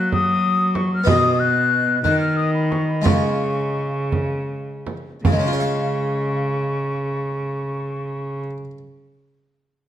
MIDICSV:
0, 0, Header, 1, 5, 480
1, 0, Start_track
1, 0, Tempo, 643777
1, 801, Time_signature, 6, 3, 24, 8
1, 1774, Tempo, 692841
1, 2734, Tempo, 743494
1, 3694, Tempo, 771208
1, 6577, End_track
2, 0, Start_track
2, 0, Title_t, "Flute"
2, 0, Program_c, 0, 73
2, 0, Note_on_c, 0, 90, 119
2, 89, Note_off_c, 0, 90, 0
2, 98, Note_on_c, 0, 87, 122
2, 561, Note_on_c, 0, 85, 102
2, 572, Note_off_c, 0, 87, 0
2, 681, Note_off_c, 0, 85, 0
2, 702, Note_on_c, 0, 89, 113
2, 805, Note_on_c, 0, 87, 127
2, 816, Note_off_c, 0, 89, 0
2, 1041, Note_on_c, 0, 90, 125
2, 1052, Note_off_c, 0, 87, 0
2, 1513, Note_off_c, 0, 90, 0
2, 1517, Note_on_c, 0, 90, 118
2, 1637, Note_off_c, 0, 90, 0
2, 1642, Note_on_c, 0, 89, 110
2, 1764, Note_on_c, 0, 87, 112
2, 1775, Note_off_c, 0, 89, 0
2, 1881, Note_off_c, 0, 87, 0
2, 1886, Note_on_c, 0, 83, 96
2, 2003, Note_on_c, 0, 85, 105
2, 2014, Note_off_c, 0, 83, 0
2, 2118, Note_off_c, 0, 85, 0
2, 2122, Note_on_c, 0, 83, 85
2, 2230, Note_off_c, 0, 83, 0
2, 2235, Note_on_c, 0, 85, 97
2, 2948, Note_off_c, 0, 85, 0
2, 3692, Note_on_c, 0, 85, 88
2, 5669, Note_off_c, 0, 85, 0
2, 6577, End_track
3, 0, Start_track
3, 0, Title_t, "Harpsichord"
3, 0, Program_c, 1, 6
3, 0, Note_on_c, 1, 54, 67
3, 0, Note_on_c, 1, 58, 56
3, 0, Note_on_c, 1, 66, 57
3, 0, Note_on_c, 1, 73, 56
3, 758, Note_off_c, 1, 58, 0
3, 763, Note_off_c, 1, 66, 0
3, 767, Note_off_c, 1, 73, 0
3, 773, Note_off_c, 1, 54, 0
3, 774, Note_on_c, 1, 59, 66
3, 783, Note_on_c, 1, 66, 67
3, 792, Note_on_c, 1, 75, 64
3, 805, Note_on_c, 1, 47, 75
3, 1499, Note_off_c, 1, 47, 0
3, 1523, Note_on_c, 1, 51, 76
3, 2206, Note_off_c, 1, 59, 0
3, 2210, Note_off_c, 1, 66, 0
3, 2214, Note_off_c, 1, 75, 0
3, 2216, Note_on_c, 1, 56, 56
3, 2217, Note_off_c, 1, 51, 0
3, 2224, Note_on_c, 1, 65, 55
3, 2233, Note_on_c, 1, 73, 54
3, 2239, Note_on_c, 1, 49, 61
3, 3509, Note_off_c, 1, 49, 0
3, 3654, Note_off_c, 1, 56, 0
3, 3658, Note_off_c, 1, 65, 0
3, 3662, Note_off_c, 1, 73, 0
3, 3695, Note_on_c, 1, 49, 64
3, 3738, Note_on_c, 1, 56, 61
3, 3783, Note_on_c, 1, 61, 60
3, 3827, Note_on_c, 1, 65, 62
3, 3867, Note_on_c, 1, 73, 61
3, 3911, Note_on_c, 1, 77, 60
3, 5672, Note_off_c, 1, 49, 0
3, 5715, Note_off_c, 1, 56, 0
3, 5760, Note_off_c, 1, 61, 0
3, 5804, Note_off_c, 1, 65, 0
3, 5844, Note_off_c, 1, 73, 0
3, 5888, Note_off_c, 1, 77, 0
3, 6577, End_track
4, 0, Start_track
4, 0, Title_t, "Cello"
4, 0, Program_c, 2, 42
4, 0, Note_on_c, 2, 54, 86
4, 774, Note_off_c, 2, 54, 0
4, 797, Note_on_c, 2, 47, 96
4, 1511, Note_off_c, 2, 47, 0
4, 1524, Note_on_c, 2, 51, 88
4, 2239, Note_on_c, 2, 49, 78
4, 2249, Note_off_c, 2, 51, 0
4, 3535, Note_off_c, 2, 49, 0
4, 3692, Note_on_c, 2, 49, 83
4, 5669, Note_off_c, 2, 49, 0
4, 6577, End_track
5, 0, Start_track
5, 0, Title_t, "Frame drum"
5, 92, Note_on_c, 9, 64, 55
5, 167, Note_off_c, 9, 64, 0
5, 561, Note_on_c, 9, 64, 56
5, 636, Note_off_c, 9, 64, 0
5, 798, Note_on_c, 9, 64, 82
5, 873, Note_off_c, 9, 64, 0
5, 1525, Note_on_c, 9, 64, 55
5, 1600, Note_off_c, 9, 64, 0
5, 2009, Note_on_c, 9, 64, 49
5, 2078, Note_off_c, 9, 64, 0
5, 2243, Note_on_c, 9, 64, 82
5, 2312, Note_off_c, 9, 64, 0
5, 2965, Note_on_c, 9, 64, 52
5, 3030, Note_off_c, 9, 64, 0
5, 3445, Note_on_c, 9, 64, 49
5, 3509, Note_off_c, 9, 64, 0
5, 3691, Note_on_c, 9, 64, 86
5, 3754, Note_off_c, 9, 64, 0
5, 6577, End_track
0, 0, End_of_file